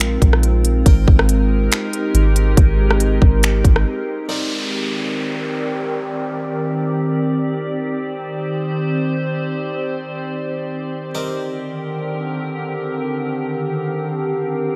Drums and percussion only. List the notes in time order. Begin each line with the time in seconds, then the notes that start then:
0.00 finger snap, closed hi-hat
0.22 kick, closed hi-hat
0.33 cross-stick
0.43 closed hi-hat
0.65 closed hi-hat
0.86 kick, closed hi-hat
1.08 kick
1.19 cross-stick
1.29 closed hi-hat
1.72 finger snap, closed hi-hat
1.93 closed hi-hat
2.15 closed hi-hat
2.36 closed hi-hat
2.57 kick, closed hi-hat
2.91 cross-stick
3.00 closed hi-hat
3.22 kick
3.43 finger snap, closed hi-hat
3.65 kick, closed hi-hat
3.76 cross-stick